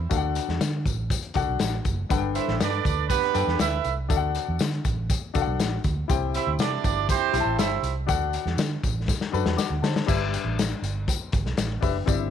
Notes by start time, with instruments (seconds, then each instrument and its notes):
0.09 fingered electric bass D2, grand piano D3 D4 F#4 A4 F5, kick, closed hi-hat, tambourine
0.17 grand piano F#5
0.35 closed hi-hat, tambourine
0.48 fingered electric bass E2, snare
0.61 fingered electric bass D3, snare, closed hi-hat, tambourine
0.85 fingered electric bass A1, kick, closed hi-hat, tambourine
1.10 kick, closed hi-hat, tambourine
1.23 closed hi-hat
1.34 fingered electric bass C2, grand piano D4 F#4 A4 F#5, kick, closed hi-hat, tambourine
1.49 fingered electric bass B1
1.59 fingered electric bass A1, snare, closed hi-hat, tambourine
1.85 fingered electric bass F#1, kick, closed hi-hat, tambourine
2.09 fingered electric bass G1, grand piano G2 D4 A4 B4 F#5, kick, closed hi-hat, tambourine
2.17 grand piano G5
2.34 horn section E4 A4 C5 E5, closed hi-hat, tambourine
2.48 fingered electric bass A1, snare
2.60 fingered electric bass G2, horn section D4 A4 B4 D5, snare, closed hi-hat, tambourine
2.72 closed hi-hat
2.85 fingered electric bass D2, kick, closed hi-hat, tambourine
3.09 horn section B3 D4 G4 B4, kick, closed hi-hat, tambourine
3.23 closed hi-hat
3.33 fingered electric bass F#2, grand piano D4 A4 B4 G5, closed hi-hat, tambourine
3.47 fingered electric bass E2, snare
3.59 fingered electric bass D2, horn section E4 A4 B4 E5, snare, closed hi-hat, tambourine
3.84 fingered electric bass C2, closed hi-hat, tambourine
4.08 fingered electric bass D2, grand piano D3 D4 F#4 A4 E5, kick, closed hi-hat, tambourine
4.16 grand piano F#5
4.35 closed hi-hat, tambourine
4.48 fingered electric bass E2
4.59 fingered electric bass D3, snare, closed hi-hat, tambourine
4.72 closed hi-hat
4.85 fingered electric bass A1, kick, closed hi-hat, tambourine
5.10 kick, closed hi-hat, tambourine
5.34 fingered electric bass C2, grand piano D4 F#4 A4 F5, kick, closed hi-hat, tambourine
5.41 grand piano F#5
5.47 fingered electric bass B1
5.60 fingered electric bass A1, snare, closed hi-hat, tambourine
5.84 fingered electric bass D2, kick, closed hi-hat, tambourine
6.08 fingered electric bass C2, grand piano C3 E4 G4 C5 G5, kick, closed hi-hat, tambourine
6.34 horn section E4 G4 C5 E5, closed hi-hat, tambourine
6.47 fingered electric bass D2
6.58 fingered electric bass C3, horn section D4 E4 G4 D5, snare, closed hi-hat, tambourine
6.84 fingered electric bass G1, kick, closed hi-hat, tambourine
7.09 horn section C4 E4 G4 C5, kick, closed hi-hat, tambourine
7.33 fingered electric bass B1, grand piano E4 G4 C5 G5, closed hi-hat, tambourine
7.40 grand piano A5
7.45 fingered electric bass A1
7.59 horn section E4 G4 C5 E5, snare, closed hi-hat, tambourine
7.83 fingered electric bass C2, closed hi-hat, tambourine
8.06 fingered electric bass D2, grand piano D3 D4 F#4 A4 F#5, kick, closed hi-hat, tambourine
8.33 closed hi-hat, tambourine
8.45 fingered electric bass E2, snare
8.57 fingered electric bass D3, snare, closed hi-hat, tambourine
8.83 fingered electric bass A1, kick, closed hi-hat, tambourine
9.08 kick, snare, tambourine
9.21 snare
9.32 fingered electric bass F#2, grand piano D4 F#4 A4 B4, tambourine
9.46 fingered electric bass E2, snare
9.57 grand piano F#5 D6, muted fingered electric bass stroke, snare, tambourine
9.70 fingered electric bass D2
9.82 fingered electric bass D3, grand piano C5 A5, snare, tambourine
9.96 snare
10.06 fingered electric bass G1, grand piano G2 D4 G4 B4 E5, kick, crash, tambourine
10.34 closed hi-hat, tambourine
10.44 fingered electric bass A1
10.59 snare, closed hi-hat, tambourine
10.82 fingered electric bass G1, closed hi-hat, tambourine
11.08 kick, closed hi-hat, tambourine
11.32 fingered electric bass G1, kick, closed hi-hat, tambourine
11.45 fingered electric bass B1, snare
11.57 fingered electric bass A1, snare, closed hi-hat, tambourine
11.81 fingered electric bass F#1, grand piano D4 G4 B4 E5, kick, open hi-hat, tambourine
12.06 fingered electric bass G1, grand piano G2 C4 E4 G4 D5, kick, closed hi-hat, tambourine
12.14 grand piano E5